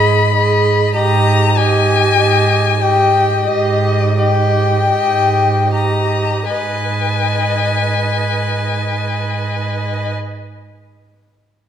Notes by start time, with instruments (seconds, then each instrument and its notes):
Already playing: cello G#2, viola G#4, violin D#5 B5
0.34 viola G#4, violin D#5
0.95 cello G#2, viola G4, violin D#5 A#5
1.57 viola G4, violin D#5 G#5
2.17 cello G#2, viola G4, violin D#5
2.81 viola G4, violin D#5 G5
3.46 cello G#2, viola G4, violin D#5
3.50 violin D#5
4.18 viola G4, violin D#5 G5
4.91 cello G#2, viola G4, violin D#5
5.71 viola G4, violin D#5 A#5
6.48 cello G#2, viola B4, violin D#5 G#5